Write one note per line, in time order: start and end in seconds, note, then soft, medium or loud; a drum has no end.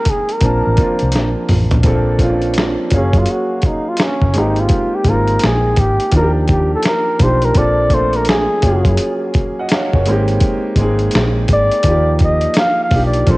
0.00 0.43 G#3 medium
0.00 0.42 A#3 medium
0.00 0.43 C4 medium
0.00 0.43 D#4 medium
0.00 0.43 G4 medium
0.00 0.12 A#4 medium
0.05 kick medium
0.05 closed hi-hat medium
0.10 0.34 G#4 medium
0.29 1.51 A#4 medium
0.29 closed hi-hat soft
0.41 0.61 A#1 medium
0.41 0.75 F3 medium
0.41 0.75 A#3 medium
0.41 0.76 C4 medium
0.41 0.77 D4 medium
0.41 kick medium
0.41 closed hi-hat medium
0.46 0.77 A5 medium
0.67 0.77 A1 medium
0.76 1.78 F3 medium
0.76 1.79 A#3 medium
0.76 1.79 C4 medium
0.76 1.80 D4 medium
0.76 kick medium
0.76 closed hi-hat medium
0.81 1.80 F4 medium
0.99 1.15 C2 medium
0.99 closed hi-hat soft
1.12 1.34 A#1 medium
1.12 snare medium
1.12 closed hi-hat medium
1.49 1.69 A1 medium
1.49 mid tom medium
1.49 open hi-hat medium
1.71 1.84 A#1 medium
1.71 closed hi-hat soft
1.71 floor tom medium
1.83 2.75 A#1 medium
1.83 2.17 F3 medium
1.83 2.18 A#3 medium
1.83 2.18 C4 medium
1.83 2.19 D4 medium
1.83 kick loud
1.83 closed hi-hat medium
1.87 2.20 A4 medium
2.19 2.91 F3 medium
2.19 2.90 A#3 medium
2.19 2.92 C4 medium
2.19 2.29 C#4 medium
2.19 kick medium
2.19 closed hi-hat medium
2.23 2.93 F4 medium
2.29 2.96 D4 medium
2.42 closed hi-hat soft
2.54 closed hi-hat medium
2.58 finger snap medium
2.58 snare loud
2.90 3.11 F#1 medium
2.90 4.26 F#3 medium
2.90 4.27 A#3 medium
2.90 4.28 C#4 medium
2.90 kick medium
2.90 closed hi-hat medium
2.94 3.20 C#4 medium
2.94 4.29 G#4 medium
2.94 4.28 F5 medium
3.13 3.25 F#2 medium
3.13 kick loud
3.13 closed hi-hat soft
3.18 3.33 F4 medium
3.26 closed hi-hat medium
3.31 3.68 F#4 medium
3.62 kick medium
3.62 closed hi-hat medium
3.67 3.91 D#4 medium
3.89 4.05 F4 medium
3.97 finger snap medium
3.97 snare loud
3.97 closed hi-hat medium
4.04 4.40 C#4 medium
4.22 4.37 F#1 medium
4.22 kick medium
4.33 4.66 G#1 medium
4.33 5.01 G#3 medium
4.33 5.02 A#3 medium
4.33 5.03 C4 medium
4.33 5.03 D#4 medium
4.33 closed hi-hat medium
4.38 4.61 D#4 medium
4.38 5.04 G4 medium
4.56 4.97 F4 medium
4.56 closed hi-hat soft
4.69 kick loud
4.69 closed hi-hat medium
4.95 5.10 G4 medium
5.04 5.36 G#1 medium
5.04 6.12 G#3 medium
5.04 6.11 A#3 medium
5.04 6.13 C4 medium
5.04 6.14 D#4 medium
5.04 kick medium
5.04 closed hi-hat medium
5.09 6.14 F4 medium
5.09 5.47 A#4 medium
5.27 closed hi-hat soft
5.39 closed hi-hat medium
5.43 5.74 A#1 loud
5.43 5.81 G#4 medium
5.43 finger snap medium
5.43 snare loud
5.76 5.97 G#1 medium
5.76 6.14 G4 medium
5.76 kick medium
5.76 closed hi-hat medium
6.00 closed hi-hat soft
6.11 6.74 D#2 medium
6.11 7.14 F3 medium
6.11 7.14 A#3 medium
6.11 7.15 D4 medium
6.11 7.15 D#4 medium
6.11 kick medium
6.11 closed hi-hat medium
6.17 6.23 F#4 medium
6.17 6.32 A#4 medium
6.23 7.19 G4 medium
6.48 kick medium
6.48 closed hi-hat soft
6.52 6.72 G4 medium
6.75 6.85 A4 medium
6.83 finger snap medium
6.83 snare medium
6.83 closed hi-hat medium
6.88 7.25 A#4 loud
7.18 7.51 B1 medium
7.18 7.52 F3 medium
7.18 7.54 A#3 medium
7.18 7.54 D4 medium
7.18 7.55 D#4 medium
7.18 kick loud
7.18 closed hi-hat medium
7.23 7.56 G4 medium
7.23 7.46 C5 medium
7.42 7.59 A#4 medium
7.42 closed hi-hat soft
7.54 8.46 A#1 loud
7.54 7.88 F3 medium
7.54 7.89 A#3 medium
7.54 7.90 C4 medium
7.54 7.90 D4 medium
7.54 kick loud
7.54 closed hi-hat medium
7.58 7.91 A4 medium
7.58 7.96 D5 loud
7.90 8.62 F3 medium
7.90 8.61 A#3 medium
7.90 8.63 C4 medium
7.90 8.64 D4 medium
7.90 kick medium
7.90 closed hi-hat medium
7.94 8.64 A3 medium
7.94 8.18 C5 loud
8.13 8.28 A#4 medium
8.13 closed hi-hat soft
8.25 closed hi-hat medium
8.29 8.96 G#4 medium
8.29 finger snap medium
8.29 snare loud
8.62 8.83 F#1 medium
8.62 9.98 F#3 medium
8.62 9.98 A#3 medium
8.62 9.99 C#4 medium
8.62 9.99 F4 medium
8.62 kick medium
8.62 closed hi-hat medium
8.67 10.00 G#4 medium
8.85 8.97 F#2 medium
8.85 kick loud
8.85 closed hi-hat soft
8.97 closed hi-hat medium
9.34 kick medium
9.34 closed hi-hat soft
9.59 9.71 D#5 medium
9.59 9.71 F#5 medium
9.69 9.92 F5 medium
9.69 finger snap medium
9.69 snare loud
9.69 closed hi-hat medium
9.73 9.93 C#5 medium
9.93 10.08 F#1 medium
9.93 10.28 A#4 medium
9.93 10.28 C#5 medium
9.93 kick medium
10.06 10.37 G#1 medium
10.06 10.74 G#3 medium
10.06 10.74 A#3 medium
10.06 10.75 C4 medium
10.06 closed hi-hat medium
10.10 10.75 D#4 medium
10.10 10.76 G4 medium
10.28 closed hi-hat soft
10.40 kick loud
10.40 closed hi-hat medium
10.76 11.08 G#1 medium
10.76 11.84 G#3 medium
10.76 11.84 A#3 medium
10.76 11.85 C4 medium
10.76 kick medium
10.76 closed hi-hat medium
10.81 11.86 D#4 medium
10.81 11.87 G#4 medium
10.99 closed hi-hat soft
11.11 closed hi-hat medium
11.15 11.45 A#1 loud
11.15 finger snap medium
11.15 snare loud
11.48 11.69 G#1 medium
11.48 kick medium
11.48 closed hi-hat medium
11.53 12.18 D5 loud
11.71 closed hi-hat soft
11.83 12.46 D#2 loud
11.83 12.86 F3 medium
11.83 12.86 A#3 medium
11.83 12.87 F4 medium
11.83 kick medium
11.83 closed hi-hat medium
11.87 12.87 D#4 medium
11.87 12.88 G4 medium
12.19 kick medium
12.19 closed hi-hat medium
12.24 12.55 D#5 loud
12.41 closed hi-hat soft
12.54 finger snap medium
12.54 snare loud
12.54 closed hi-hat medium
12.59 12.80 F5 loud
12.84 13.04 F5 medium
12.91 13.23 B1 medium
12.91 13.25 F3 medium
12.91 13.25 A#3 medium
12.91 13.26 D4 medium
12.91 13.27 D#4 medium
12.91 kick medium
12.91 open hi-hat medium
12.96 13.27 G4 medium
13.06 13.32 D5 medium
13.14 closed hi-hat soft
13.26 13.38 A#1 medium
13.26 13.38 F3 medium
13.26 13.38 A#3 medium
13.26 13.38 C4 medium
13.26 13.38 D4 medium
13.26 kick loud
13.26 closed hi-hat medium
13.30 13.38 A4 medium
13.30 13.38 C5 loud